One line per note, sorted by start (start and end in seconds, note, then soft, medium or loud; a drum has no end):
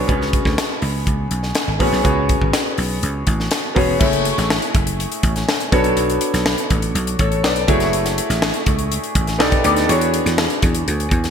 0.00 0.07 B3 medium
0.00 0.11 D4 medium
0.00 0.08 F#4 medium
0.00 0.09 G#4 medium
0.00 0.08 C#5 medium
0.07 0.39 C#2 loud
0.07 0.82 B3 medium
0.07 0.82 C#4 medium
0.07 0.83 F#4 medium
0.07 0.83 G#4 medium
0.07 0.83 C#5 medium
0.07 kick loud
0.07 closed hi-hat medium
0.22 snare soft
0.33 kick loud
0.33 closed hi-hat medium
0.45 0.56 D2 medium
0.45 kick medium
0.45 snare soft
0.58 snare loud
0.58 closed hi-hat loud
0.82 1.03 C#2 loud
0.82 open hi-hat medium
1.07 1.27 C#2 loud
1.07 kick medium
1.07 closed hi-hat medium
1.31 1.51 B1 medium
1.31 closed hi-hat medium
1.43 snare soft
1.55 snare loud
1.55 closed hi-hat medium
1.68 1.78 G#1 medium
1.79 1.91 A1 medium
1.79 1.99 B3 medium
1.79 1.99 C#4 medium
1.79 1.99 F#4 medium
1.79 1.99 G#4 medium
1.79 1.99 C#5 medium
1.79 kick medium
1.79 open hi-hat medium
1.92 2.03 B1 medium
1.92 snare soft
2.03 2.35 C#2 medium
2.03 2.78 B3 medium
2.03 2.79 C#4 medium
2.03 2.79 F#4 medium
2.03 2.79 G#4 medium
2.03 2.79 C#5 medium
2.03 kick loud
2.03 closed hi-hat medium
2.29 kick loud
2.29 closed hi-hat medium
2.41 2.52 G#1 medium
2.41 kick medium
2.53 snare loud
2.53 closed hi-hat loud
2.78 2.98 B1 medium
2.78 open hi-hat medium
3.03 3.23 C#2 medium
3.03 closed hi-hat medium
3.27 3.48 A1 medium
3.27 kick medium
3.27 closed hi-hat medium
3.40 snare soft
3.51 snare medium
3.51 closed hi-hat medium
3.75 3.97 E1 medium
3.75 3.94 B3 medium
3.75 3.94 C#4 medium
3.75 3.94 F#4 medium
3.75 3.95 G#4 medium
3.75 3.95 C#5 medium
3.75 kick medium
3.75 open hi-hat medium
3.99 4.31 F#1 medium
3.99 4.74 A3 medium
3.99 4.74 E4 medium
3.99 4.74 F#4 medium
3.99 4.74 G#4 medium
3.99 4.75 C#5 medium
3.99 kick loud
3.99 crash medium
4.13 closed hi-hat medium
4.25 closed hi-hat medium
4.38 4.58 A1 medium
4.38 snare soft
4.38 closed hi-hat soft
4.50 snare loud
4.62 closed hi-hat medium
4.75 5.05 F#1 medium
4.75 kick loud
4.75 closed hi-hat medium
4.87 closed hi-hat medium
5.00 closed hi-hat medium
5.12 closed hi-hat medium
5.23 5.44 A1 medium
5.23 kick medium
5.23 closed hi-hat medium
5.36 snare soft
5.36 closed hi-hat soft
5.49 snare loud
5.60 closed hi-hat soft
5.72 5.93 B1 loud
5.72 6.51 B3 medium
5.72 6.51 D4 medium
5.72 6.51 F#4 medium
5.72 6.51 A4 medium
5.72 6.51 C#5 loud
5.72 kick loud
5.72 closed hi-hat medium
5.84 closed hi-hat soft
5.97 6.17 B1 loud
5.97 closed hi-hat medium
6.10 closed hi-hat medium
6.21 closed hi-hat medium
6.34 6.54 B1 loud
6.34 snare soft
6.34 closed hi-hat medium
6.46 snare loud
6.58 closed hi-hat medium
6.70 6.91 A1 medium
6.70 kick medium
6.70 closed hi-hat medium
6.82 closed hi-hat medium
6.95 7.15 B1 loud
6.95 closed hi-hat medium
7.07 closed hi-hat medium
7.19 7.44 A1 medium
7.19 7.43 A4 medium
7.19 7.43 C#5 medium
7.19 kick medium
7.19 closed hi-hat medium
7.32 closed hi-hat soft
7.43 7.64 B1 medium
7.43 7.90 B4 medium
7.43 7.90 D5 medium
7.43 snare loud
7.56 closed hi-hat medium
7.68 8.19 F#1 loud
7.68 8.46 A3 loud
7.68 8.46 E4 medium
7.68 8.47 F#4 medium
7.68 8.47 G#4 medium
7.68 8.47 C#5 medium
7.68 kick loud
7.68 closed hi-hat medium
7.80 snare soft
7.80 closed hi-hat medium
7.93 closed hi-hat medium
8.06 snare soft
8.06 closed hi-hat medium
8.18 closed hi-hat medium
8.30 8.50 A1 medium
8.30 snare soft
8.30 closed hi-hat medium
8.42 snare loud
8.54 closed hi-hat soft
8.66 8.97 C#2 medium
8.66 kick loud
8.66 closed hi-hat medium
8.79 closed hi-hat medium
8.92 closed hi-hat medium
9.04 closed hi-hat medium
9.15 9.40 A1 medium
9.15 kick medium
9.15 closed hi-hat medium
9.27 snare soft
9.27 closed hi-hat soft
9.38 9.60 B1 medium
9.38 9.59 B3 medium
9.38 9.59 D#4 medium
9.38 9.59 G4 medium
9.38 9.59 A4 medium
9.38 9.59 D5 loud
9.38 snare loud
9.52 kick medium
9.52 closed hi-hat soft
9.64 9.85 D2 medium
9.64 9.83 B3 medium
9.64 9.83 D#4 medium
9.64 9.83 G4 medium
9.64 9.83 A4 medium
9.64 9.83 D5 loud
9.64 closed hi-hat medium
9.76 snare soft
9.76 closed hi-hat soft
9.88 10.19 E2 medium
9.88 10.62 B3 medium
9.88 10.62 D4 medium
9.88 10.63 F#4 medium
9.88 10.63 G#4 medium
9.88 10.63 C#5 medium
9.88 closed hi-hat medium
10.01 closed hi-hat medium
10.14 closed hi-hat medium
10.26 10.46 E2 loud
10.26 snare soft
10.26 closed hi-hat medium
10.38 snare loud
10.50 closed hi-hat soft
10.62 10.83 E2 medium
10.62 kick loud
10.62 closed hi-hat medium
10.75 closed hi-hat medium
10.88 11.08 D2 medium
10.88 closed hi-hat medium
11.00 closed hi-hat medium
11.11 11.30 E2 medium
11.11 kick medium
11.11 closed hi-hat medium
11.24 snare soft
11.24 closed hi-hat soft